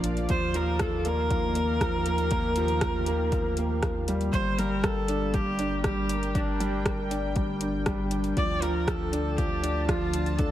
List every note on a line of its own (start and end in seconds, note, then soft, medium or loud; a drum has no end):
0.00 0.28 A#1 medium
0.00 0.30 A#2 medium
0.00 0.29 F3 loud
0.00 5.95 A#3 medium
0.00 0.05 D4 loud
0.00 0.31 A#4 medium
0.00 1.92 D5 medium
0.00 5.29 F5 medium
0.00 closed hi-hat medium
0.05 0.19 D4 medium
0.17 closed hi-hat soft
0.29 4.31 D#2 medium
0.29 4.33 D#3 medium
0.29 0.53 F3 medium
0.29 0.57 C5 loud
0.29 kick loud
0.29 closed hi-hat soft
0.54 0.79 F3 loud
0.54 0.83 A#4 loud
0.54 closed hi-hat medium
0.79 1.04 F4 medium
0.79 1.09 A4 loud
0.79 kick medium
0.79 cross-stick loud
0.79 closed hi-hat soft
1.05 1.30 A#3 loud
1.05 3.84 A#4 loud
1.05 closed hi-hat medium
1.30 1.45 F3 medium
1.30 4.98 G4 medium
1.30 kick loud
1.30 closed hi-hat soft
1.55 1.80 A#3 loud
1.55 closed hi-hat medium
1.81 2.05 F3 loud
1.81 kick loud
1.81 cross-stick medium
1.81 closed hi-hat soft
2.06 2.21 A#3 medium
2.06 closed hi-hat medium
2.18 closed hi-hat soft
2.31 2.56 A#3 loud
2.31 kick loud
2.31 closed hi-hat soft
2.56 2.81 F3 loud
2.56 closed hi-hat medium
2.68 closed hi-hat soft
2.81 kick loud
2.81 cross-stick medium
2.81 closed hi-hat soft
3.06 3.32 A#3 loud
3.06 closed hi-hat medium
3.32 3.47 F3 medium
3.32 kick loud
3.32 closed hi-hat soft
3.57 3.81 A#3 loud
3.57 closed hi-hat medium
3.83 3.97 A#3 medium
3.83 kick loud
3.83 cross-stick medium
3.83 closed hi-hat soft
4.08 4.32 G3 loud
4.08 closed hi-hat medium
4.21 closed hi-hat soft
4.32 8.34 G1 medium
4.32 4.57 G3 medium
4.32 8.37 G3 medium
4.32 4.60 C5 loud
4.32 kick loud
4.32 closed hi-hat soft
4.58 4.83 G3 loud
4.58 4.85 A#4 loud
4.58 closed hi-hat medium
4.69 10.51 D4 medium
4.84 5.35 A4 loud
4.84 5.08 A#4 medium
4.84 kick loud
4.84 cross-stick loud
4.84 closed hi-hat soft
5.08 5.33 D4 loud
5.08 closed hi-hat medium
5.24 8.36 A#4 medium
5.33 5.48 G3 medium
5.33 5.83 G4 loud
5.33 kick loud
5.33 closed hi-hat soft
5.59 5.83 D4 loud
5.59 closed hi-hat medium
5.77 9.45 G5 medium
5.84 6.08 G3 loud
5.84 6.38 G4 loud
5.84 kick loud
5.84 cross-stick medium
5.84 closed hi-hat soft
6.09 6.24 D4 medium
6.09 closed hi-hat medium
6.23 closed hi-hat soft
6.35 6.59 D4 loud
6.35 6.86 D4 medium
6.35 kick loud
6.35 closed hi-hat soft
6.60 6.84 G3 loud
6.60 closed hi-hat medium
6.86 7.10 A#4 medium
6.86 kick loud
6.86 cross-stick loud
6.86 closed hi-hat soft
7.11 7.35 D4 loud
7.11 closed hi-hat medium
7.36 7.50 G3 medium
7.36 kick loud
7.36 closed hi-hat soft
7.61 7.85 D4 medium
7.61 closed hi-hat medium
7.86 8.10 G3 loud
7.86 kick loud
7.86 cross-stick loud
7.86 closed hi-hat soft
8.11 8.26 D4 medium
8.11 closed hi-hat medium
8.24 closed hi-hat soft
8.36 10.51 D2 medium
8.36 10.51 D3 medium
8.36 8.61 F3 medium
8.36 8.64 D5 loud
8.36 kick loud
8.36 closed hi-hat soft
8.62 8.86 F3 loud
8.62 8.90 A#4 loud
8.62 closed hi-hat medium
8.85 9.38 A4 loud
8.85 10.51 A5 medium
8.85 kick loud
8.85 cross-stick loud
8.85 closed hi-hat soft
9.12 9.36 D4 loud
9.12 closed hi-hat medium
9.37 9.52 F3 medium
9.37 9.87 G4 loud
9.37 kick loud
9.37 closed hi-hat soft
9.63 9.87 D4 loud
9.63 closed hi-hat medium
9.82 10.51 F5 medium
9.88 10.12 F3 loud
9.88 10.39 F4 loud
9.88 kick loud
9.88 cross-stick loud
9.88 closed hi-hat soft
10.13 10.28 D4 medium
10.13 closed hi-hat medium
10.26 closed hi-hat soft
10.38 10.51 D4 loud
10.38 10.51 A4 loud
10.38 kick loud
10.38 closed hi-hat soft